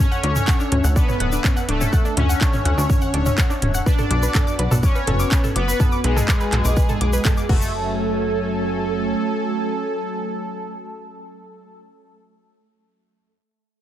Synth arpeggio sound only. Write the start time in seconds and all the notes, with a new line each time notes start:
0.12 F#5 F#6
0.24 D4 D5
0.36 C#4 C#5
0.48 F#5 F#6
0.60 D4 D5
0.72 C#4 C#5
0.84 F#5 F#6
0.96 D4 D5
1.08 C#4 C#5
1.20 F#5 F#6
1.33 D4 D5
1.44 C#4 C#5
1.57 F#5 F#6
1.69 D4 D5
1.81 C#4 C#5
1.93 F#5 F#6
2.05 D4 D5
2.17 C#4 C#5
2.29 F#5 F#6
2.41 D4 D5
2.53 C#4 C#5
2.65 F#5 F#6
2.78 D4 D5
2.90 C#4 C#5
3.02 F#5 F#6
3.14 D4 D5
3.26 C#4 C#5
3.38 F#5 F#6
3.50 D4 D5
3.62 C#4 C#5
3.74 F#5 F#6
3.86 B4 B5
3.99 A4 A5
4.11 D6
4.23 B4 B5
4.35 A4 A5
4.47 D6
4.59 B4 B5
4.71 A4 A5
4.83 D6
4.95 B4 B5
5.07 A4 A5
5.20 D6
5.32 B4 B5
5.44 A4 A5
5.56 D6
5.68 B4 B5
5.80 A4 A5
5.92 D6
6.04 B4 B5
6.16 A4 A5
6.28 D6
6.41 B4 B5
6.53 A4 A5
6.65 D6
6.77 B4 B5
6.89 A4 A5
7.01 D6
7.13 B4 B5
7.25 A4 A5
7.37 D6
7.49 F#4